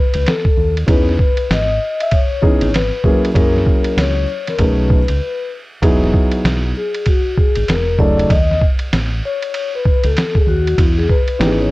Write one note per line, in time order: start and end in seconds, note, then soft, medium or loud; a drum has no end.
0.00 0.29 B4 medium
0.14 0.25 C#2 medium
0.14 ride medium
0.26 0.74 A4 medium
0.26 snare loud
0.26 hi-hat pedal soft
0.26 ride medium
0.45 kick medium
0.57 0.85 D#2 medium
0.77 ride soft
0.86 1.16 E2 medium
0.86 1.11 E3 medium
0.86 1.11 B3 medium
0.86 1.12 C#4 medium
0.86 1.12 D#4 medium
0.86 1.12 G#4 medium
0.86 1.52 B4 medium
0.86 kick loud
0.86 ride medium
1.09 snare soft
1.19 kick medium
1.37 ride medium
1.50 1.78 G#1 medium
1.50 2.02 D#5 medium
1.50 snare loud
1.50 hi-hat pedal medium
1.50 ride medium
2.00 2.12 E5 medium
2.00 ride medium
2.11 2.76 C#5 medium
2.11 kick medium
2.11 ride medium
2.42 2.66 E3 medium
2.42 2.66 B3 medium
2.42 2.66 C#4 medium
2.42 2.67 D#4 medium
2.42 2.67 G#4 medium
2.42 kick loud
2.61 2.89 G#1 medium
2.61 ride medium
2.74 3.21 B4 medium
2.74 snare loud
2.74 hi-hat pedal soft
2.74 ride medium
3.04 3.28 F#3 medium
3.04 3.28 A#3 medium
3.04 3.28 C#4 medium
3.04 3.29 E4 medium
3.04 3.29 G#4 medium
3.04 kick medium
3.25 ride medium
3.34 3.63 F#2 medium
3.34 4.23 F#3 medium
3.34 4.23 A#3 medium
3.34 4.23 C#4 medium
3.34 4.24 E4 medium
3.34 4.24 G#4 medium
3.34 4.00 A#4 medium
3.34 kick loud
3.34 ride medium
3.56 snare soft
3.67 kick medium
3.84 ride medium
3.97 4.25 C#2 medium
3.97 4.50 C#5 medium
3.97 snare loud
3.97 hi-hat pedal soft
3.97 ride medium
4.47 4.59 A#4 medium
4.47 snare soft
4.47 ride medium
4.58 5.04 B1 loud
4.58 4.97 F#3 medium
4.58 4.97 A3 medium
4.58 4.98 C#4 medium
4.58 4.98 D#4 medium
4.58 4.98 G#4 medium
4.58 5.49 B4 medium
4.58 kick medium
4.58 ride medium
4.90 kick medium
5.08 5.20 C#2 medium
5.08 ride medium
5.82 6.10 E1 medium
5.82 6.71 F#3 medium
5.82 6.71 B3 medium
5.82 6.71 D#4 medium
5.82 6.71 E4 medium
5.82 6.71 G#4 medium
5.82 kick loud
5.82 ride medium
6.04 snare soft
6.14 kick medium
6.32 ride medium
6.44 6.72 B1 loud
6.44 snare loud
6.44 hi-hat pedal medium
6.44 ride medium
6.77 7.05 G#4 medium
6.94 ride medium
7.06 7.36 F#4 medium
7.06 kick medium
7.06 ride medium
7.37 7.70 G#4 medium
7.37 kick medium
7.55 7.67 G#1 medium
7.55 ride medium
7.68 8.24 E1 medium
7.68 8.00 A#4 medium
7.68 snare loud
7.68 hi-hat pedal soft
7.68 ride medium
7.98 8.30 C#3 medium
7.98 8.30 F#3 medium
7.98 8.30 A3 medium
7.98 8.30 D#4 medium
7.98 8.31 A4 medium
7.98 8.31 D5 loud
7.98 kick medium
8.19 ride medium
8.30 8.58 D#2 medium
8.30 8.60 D#5 medium
8.30 kick loud
8.30 ride medium
8.51 snare soft
8.62 kick medium
8.79 ride medium
8.93 9.20 A1 medium
8.93 snare loud
8.93 hi-hat pedal medium
8.93 ride medium
9.25 9.71 C#5 loud
9.42 ride medium
9.54 ride medium
9.75 10.03 B4 medium
9.85 kick medium
10.04 10.15 C#2 medium
10.04 10.37 A4 medium
10.04 ride medium
10.17 snare loud
10.17 hi-hat pedal soft
10.17 ride medium
10.35 10.47 G#4 medium
10.35 kick medium
10.47 10.74 D#2 medium
10.47 10.79 F#4 medium
10.67 ride medium
10.78 11.05 E2 medium
10.78 10.98 E4 medium
10.78 kick loud
10.78 ride medium
10.98 11.09 G#4 medium
10.98 snare soft
11.09 11.61 B4 medium
11.09 kick medium
11.28 ride medium
11.39 11.67 G#1 medium
11.39 11.71 E3 medium
11.39 11.71 B3 medium
11.39 11.71 C#4 medium
11.39 11.71 D#4 medium
11.39 11.48 G4 medium
11.39 snare loud
11.39 hi-hat pedal medium
11.39 ride medium
11.47 11.71 G#4 medium
11.61 11.71 C#5 medium